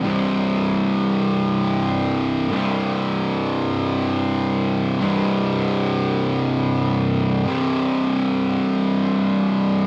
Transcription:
0.03 2.50 C2 medium
0.03 2.51 G2 loud
0.03 2.53 C3 loud
2.50 4.98 C2 medium
2.50 4.98 G2 loud
2.50 5.01 C3 loud
4.99 7.45 C2 loud
4.99 7.45 G2 loud
4.99 7.47 C3 loud
7.45 9.87 C2 medium
7.45 9.87 G2 loud
7.45 9.87 C3 loud

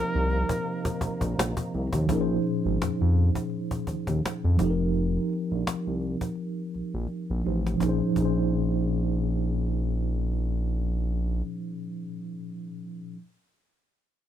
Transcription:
0.00 2.05 C3 medium
0.00 1.68 F3 medium
0.00 2.05 F3 medium
0.00 2.05 A#3 medium
0.00 1.69 C4 medium
0.00 1.69 D#4 medium
0.00 2.04 D#4 medium
0.00 1.70 G4 medium
0.00 1.39 A#4 loud
0.00 1.71 A#4 medium
0.15 0.44 C2 medium
0.30 cajon slap soft
0.49 cajon bass loud
0.63 cajon slap soft
0.85 cajon bass loud
1.01 1.10 A#1 medium
1.01 cajon bass medium
1.21 1.35 A#1 medium
1.21 cajon bass medium
1.21 cajon slap soft
1.38 1.54 A#1 loud
1.38 cajon slap loud
1.38 cajon slap medium
1.57 cajon bass medium
1.74 1.90 C2 medium
1.74 cajon slap soft
1.93 2.06 D#2 medium
1.93 cajon bass loud
2.07 2.39 A#1 loud
2.07 4.54 A#2 medium
2.07 4.54 F3 medium
2.07 4.55 C#4 medium
2.07 cajon bass loud
2.11 4.56 D#4 medium
2.11 4.57 G#4 medium
2.11 2.18 A#4 medium
2.21 4.61 C5 medium
2.43 cajon slap soft
2.47 cajon slap soft
2.64 2.78 G#1 medium
2.64 cajon slap soft
2.82 2.89 F2 soft
2.82 cajon slap medium
3.01 3.30 F2 medium
3.16 cajon slap soft
3.35 cajon bass medium
3.50 cajon slap soft
3.71 cajon bass medium
3.87 3.95 D#2 soft
3.87 cajon bass medium
4.07 4.21 D#2 medium
4.07 cajon bass medium
4.07 cajon slap soft
4.26 cajon slap loud
4.44 4.57 F2 medium
4.57 5.18 F1 loud
4.57 7.39 F3 medium
4.57 7.40 C4 medium
4.57 7.41 D#4 medium
4.57 cajon bass medium
4.62 7.42 G4 medium
4.62 4.68 A4 medium
4.71 7.46 A#4 medium
4.94 cajon slap soft
5.29 cajon slap soft
5.33 cajon slap soft
5.50 5.64 A#1 medium
5.50 cajon slap soft
5.67 5.75 C2 soft
5.67 cajon slap medium
5.87 6.16 C2 medium
6.01 cajon slap soft
6.21 cajon bass medium
6.35 cajon slap soft
6.74 6.82 A#1 soft
6.74 cajon slap soft
6.94 7.07 A#1 medium
7.07 cajon slap soft
7.30 7.43 A#1 medium
7.43 7.75 A1 medium
7.43 7.76 F3 soft
7.43 7.80 C4 soft
7.43 7.81 D#4 soft
7.43 7.81 G4 soft
7.43 7.81 C5 soft
7.43 cajon slap soft
7.67 cajon slap medium
7.74 7.98 A#2 medium
7.74 8.00 F3 medium
7.80 8.02 A#1 medium
7.80 8.01 C#4 medium
7.80 8.03 D#4 medium
7.80 cajon bass medium
7.80 cajon slap medium
7.86 8.04 G#4 medium
7.86 8.06 C5 medium
8.10 11.78 A#2 medium
8.10 11.81 F3 medium
8.16 11.42 A#1 medium
8.16 11.84 C#4 medium
8.16 11.87 D#4 medium
8.16 cajon bass medium
8.22 11.89 G#4 medium
8.22 11.92 C5 medium

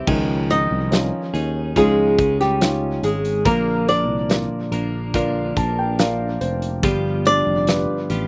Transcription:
0.07 0.67 C#2 medium
0.07 3.41 D#3 medium
0.07 1.38 F3 medium
0.07 1.34 C#4 medium
0.07 1.34 D#4 medium
0.07 1.32 G#4 medium
0.07 kick loud
0.07 crash medium
0.50 1.73 D#4 medium
0.50 1.81 D#5 loud
0.50 closed hi-hat medium
0.71 1.10 C2 medium
0.91 1.73 C#4 soft
0.91 1.74 D#4 soft
0.91 1.74 F4 medium
0.91 snare loud
0.91 closed hi-hat medium
1.34 1.73 D#2 medium
1.34 1.75 C#4 soft
1.34 1.76 D#4 soft
1.34 1.76 G#4 medium
1.34 closed hi-hat medium
1.76 2.99 C#2 loud
1.76 2.18 C#3 medium
1.76 2.19 F3 medium
1.76 2.36 G#3 medium
1.76 2.58 C#4 soft
1.76 2.19 C#4 medium
1.76 2.59 D#4 soft
1.76 2.18 D#4 medium
1.76 2.58 F4 medium
1.76 2.19 G#4 medium
1.76 2.40 G#4 medium
1.76 kick medium
1.76 closed hi-hat medium
2.18 3.46 C#4 soft
2.18 3.46 D#4 soft
2.18 kick medium
2.18 closed hi-hat medium
2.41 3.00 G3 medium
2.41 2.99 G4 medium
2.41 snare soft
2.61 3.43 C#4 medium
2.61 3.43 D#4 soft
2.61 3.43 F4 medium
2.61 snare loud
2.61 closed hi-hat loud
3.03 3.42 G#1 medium
3.03 3.43 G#3 medium
3.03 3.47 G#4 medium
3.03 closed hi-hat medium
3.25 closed hi-hat medium
3.45 4.08 A#1 medium
3.45 4.72 A#2 medium
3.45 5.14 D3 medium
3.45 4.74 F3 medium
3.45 6.79 A#3 medium
3.45 4.72 A#3 medium
3.45 3.85 A#3 medium
3.45 4.72 D4 medium
3.45 3.88 A#4 medium
3.45 4.71 A#4 medium
3.45 kick loud
3.45 closed hi-hat medium
3.88 5.53 D4 medium
3.88 5.53 D5 loud
3.88 closed hi-hat medium
4.08 4.48 C2 medium
4.29 5.11 F4 soft
4.29 5.12 A#4 soft
4.29 5.12 D5 medium
4.29 snare loud
4.29 closed hi-hat medium
4.72 5.52 A#1 medium
4.72 5.14 F3 soft
4.72 5.14 A#3 medium
4.72 5.14 D4 soft
4.72 5.14 A#4 medium
4.72 closed hi-hat medium
5.14 5.57 A#2 medium
5.14 5.57 D3 loud
5.14 5.57 F3 medium
5.14 5.57 A#3 medium
5.14 5.56 D4 medium
5.14 5.96 F4 medium
5.14 5.97 A#4 soft
5.14 5.55 A#4 medium
5.14 5.97 D5 medium
5.14 kick medium
5.14 closed hi-hat medium
5.57 6.37 A#1 medium
5.57 6.84 F3 soft
5.57 6.84 A#3 soft
5.57 6.84 D4 medium
5.57 6.83 A#4 soft
5.57 5.76 A5 medium
5.57 kick medium
5.57 closed hi-hat medium
5.79 5.98 G5 medium
5.99 6.81 F4 soft
5.99 6.81 A#4 soft
5.99 6.81 D5 medium
5.99 6.38 F5 medium
5.99 snare loud
5.99 closed hi-hat loud
6.41 6.84 F1 medium
6.41 6.80 C5 medium
6.41 closed hi-hat medium
6.62 closed hi-hat medium
6.83 7.43 G1 loud
6.83 8.10 G2 medium
6.83 8.10 D3 medium
6.83 8.11 F3 medium
6.83 8.27 G3 medium
6.83 8.10 B3 medium
6.83 8.10 F4 medium
6.83 8.09 G4 medium
6.83 kick loud
6.83 closed hi-hat medium
7.26 8.27 D4 medium
7.26 8.27 D5 loud
7.26 closed hi-hat medium
7.47 7.86 F1 medium
7.67 8.27 F4 soft
7.67 8.27 G4 soft
7.67 8.27 B4 medium
7.67 snare loud
7.67 closed hi-hat medium
8.10 8.27 A1 medium
8.10 8.27 F3 soft
8.10 8.27 B3 soft
8.10 8.27 F4 medium
8.10 8.27 G4 medium
8.10 closed hi-hat medium

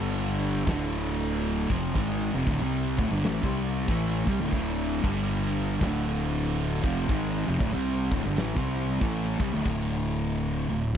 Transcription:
0.00 0.63 G1 loud
0.00 0.66 G2 medium
0.00 0.66 D3 loud
0.00 0.66 G3 loud
0.00 crash medium
0.67 1.66 D1 loud
0.67 1.68 D2 loud
0.67 1.69 A2 medium
0.67 1.69 D3 loud
0.67 kick loud
0.67 snare loud
0.67 crash medium
1.32 crash medium
1.70 1.94 F1 medium
1.70 1.95 F2 loud
1.70 1.95 C3 loud
1.70 1.96 F3 loud
1.70 kick loud
1.70 snare soft
1.95 2.32 G#1 medium
1.95 2.33 G#2 loud
1.95 2.34 D#3 loud
1.95 2.34 G#3 loud
1.95 kick loud
1.95 crash medium
2.34 2.46 F1 loud
2.34 2.47 F2 loud
2.34 2.47 C3 loud
2.47 2.59 D1 medium
2.47 2.60 D2 loud
2.47 2.60 A2 loud
2.47 kick loud
2.60 2.96 C2 medium
2.60 2.98 C3 loud
2.60 2.98 G3 loud
2.60 2.99 C4 loud
2.60 crash medium
2.99 3.10 D1 loud
2.99 3.11 D2 medium
2.99 3.11 A2 loud
2.99 kick loud
3.11 3.23 G1 loud
3.11 3.23 G2 medium
3.11 3.24 D3 loud
3.23 3.42 A1 loud
3.23 3.42 A2 loud
3.23 3.43 E3 loud
3.23 snare loud
3.23 crash medium
3.43 3.85 C2 loud
3.43 3.87 C3 loud
3.43 3.87 G3 loud
3.43 3.88 C4 loud
3.43 kick loud
3.88 4.24 A1 loud
3.88 4.26 A2 loud
3.88 4.26 E3 loud
3.88 4.27 A3 loud
3.88 kick loud
3.88 crash medium
4.27 4.39 C2 loud
4.27 4.39 C3 loud
4.27 4.40 G3 loud
4.27 kick loud
4.40 4.52 D1 loud
4.40 4.52 D2 loud
4.40 4.52 A2 loud
4.52 5.00 D1 medium
4.52 5.03 D2 medium
4.52 5.04 A2 loud
4.52 5.04 D3 loud
4.52 kick loud
4.52 crash medium
5.04 5.77 G1 loud
5.04 5.80 G2 loud
5.04 5.81 D3 loud
5.04 5.81 G3 medium
5.04 kick loud
5.17 crash medium
5.81 6.80 D1 loud
5.81 6.83 D2 loud
5.81 6.83 A2 loud
5.81 6.83 D3 loud
5.81 kick loud
5.81 snare loud
5.81 crash medium
6.46 crash medium
6.84 7.08 F1 medium
6.84 7.09 F2 loud
6.84 7.09 C3 loud
6.84 7.09 F3 loud
6.84 kick loud
6.84 snare soft
7.09 7.45 G#1 medium
7.09 7.47 G#2 medium
7.09 7.47 D#3 loud
7.09 7.48 G#3 loud
7.09 kick loud
7.09 crash medium
7.48 7.60 F1 loud
7.48 7.60 F2 medium
7.48 7.60 C3 loud
7.60 7.72 D1 medium
7.60 7.73 D2 loud
7.60 7.73 A2 loud
7.60 kick loud
7.73 8.10 C2 medium
7.73 8.11 C3 loud
7.73 8.11 G3 loud
7.73 8.12 C4 loud
7.73 crash medium
8.12 8.24 D1 medium
8.12 8.24 D2 medium
8.12 8.25 A2 loud
8.12 kick loud
8.25 8.38 G1 medium
8.25 8.36 G2 loud
8.25 8.37 D3 loud
8.37 8.56 A1 loud
8.37 8.56 A2 loud
8.37 8.56 E3 loud
8.37 snare loud
8.37 crash medium
8.57 8.99 C2 loud
8.57 9.00 C3 medium
8.57 9.01 G3 loud
8.57 9.02 C4 loud
8.57 kick loud
9.01 9.38 A1 loud
9.01 9.39 A2 loud
9.01 9.39 E3 loud
9.01 9.40 A3 loud
9.01 kick loud
9.01 crash medium
9.40 9.53 C2 loud
9.40 9.53 C3 medium
9.40 9.53 G3 loud
9.40 kick loud
9.53 9.66 D1 loud
9.53 9.65 D2 medium
9.53 9.65 A2 loud
9.65 10.66 D1 medium
9.65 10.68 D2 medium
9.65 10.68 A2 loud
9.65 10.69 D3 loud
9.65 kick loud
9.65 crash loud
10.31 open hi-hat medium
10.69 10.94 D1 medium
10.69 10.90 D2 medium
10.69 10.91 A2 medium

